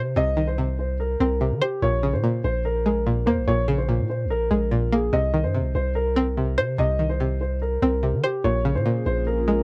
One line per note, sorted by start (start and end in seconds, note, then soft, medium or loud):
0.00 0.15 C3 medium
0.00 0.15 C3 loud
0.00 0.58 C4 medium
0.00 0.14 C5 medium
0.00 0.99 C5 medium
0.16 1.16 C2 loud
0.16 0.57 C3 medium
0.16 0.46 D#5 loud
0.37 1.41 D#3 medium
0.47 0.77 C5 medium
0.58 1.39 C3 medium
0.79 0.97 C5 medium
1.00 1.18 A#4 medium
1.20 1.53 C2 loud
1.20 1.82 C4 medium
1.20 1.59 A#4 medium
1.41 1.82 C3 medium
1.51 1.61 D#3 medium
1.61 1.80 G4 medium
1.61 1.82 C5 medium
1.82 2.15 A#1 loud
1.82 2.22 A#2 medium
1.82 2.11 C#5 loud
2.03 3.06 C#3 medium
2.13 2.23 A#2 loud
2.13 2.42 C5 medium
2.23 3.05 A#2 medium
2.44 3.28 A#1 loud
2.44 2.62 C5 medium
2.65 2.83 A#4 medium
2.86 3.89 G#3 medium
2.86 3.24 A#4 medium
3.06 3.47 A#2 medium
3.26 3.39 F2 loud
3.26 4.30 A#3 loud
3.26 3.44 C5 medium
3.37 3.47 A#1 loud
3.48 4.01 A#1 loud
3.48 3.88 A#2 medium
3.48 3.77 C#5 loud
3.68 4.72 C#3 medium
3.78 4.08 C5 medium
3.89 4.70 A#2 medium
3.99 4.27 A#2 medium
4.10 4.28 C5 medium
4.25 4.50 A#1 loud
4.31 4.49 A#4 medium
4.51 5.11 A#1 loud
4.51 5.13 G#3 medium
4.72 5.13 A#2 medium
4.93 5.13 A#3 medium
4.93 5.11 G#4 medium
5.13 5.46 C2 loud
5.13 5.54 C3 medium
5.13 5.42 D#5 loud
5.34 6.37 D#3 medium
5.44 5.61 G2 loud
5.44 5.73 C5 medium
5.55 6.36 C3 medium
5.60 5.74 C2 medium
5.75 6.59 C2 loud
5.75 5.93 C5 medium
5.95 6.14 A#4 medium
6.16 7.20 C4 medium
6.16 6.55 A#4 medium
6.37 6.77 C3 medium
6.58 6.78 C3 loud
6.58 7.61 C5 loud
6.58 6.76 C5 medium
6.78 7.78 C2 loud
6.78 7.19 C3 medium
6.78 7.08 D#5 loud
6.99 8.03 D#3 medium
7.09 7.39 C5 medium
7.20 8.02 C3 medium
7.41 7.59 C5 medium
7.62 7.80 A#4 medium
7.82 8.15 C2 loud
7.82 8.44 C4 medium
7.82 8.21 A#4 medium
8.03 8.44 C3 medium
8.13 8.23 D#3 medium
8.23 8.42 G4 medium
8.23 8.44 C5 medium
8.44 8.77 A#1 loud
8.44 8.84 A#2 medium
8.44 9.63 A#3 medium
8.44 9.63 C#4 loud
8.44 9.63 F4 medium
8.44 9.63 G#4 medium
8.44 8.73 C#5 loud
8.65 9.63 C#3 medium
8.75 8.85 A#2 loud
8.75 9.04 C5 medium
8.86 9.63 A#2 medium
9.06 9.63 A#1 loud
9.06 9.24 C5 loud
9.27 9.45 A#4 medium
9.48 9.63 G#3 medium
9.48 9.63 A#4 medium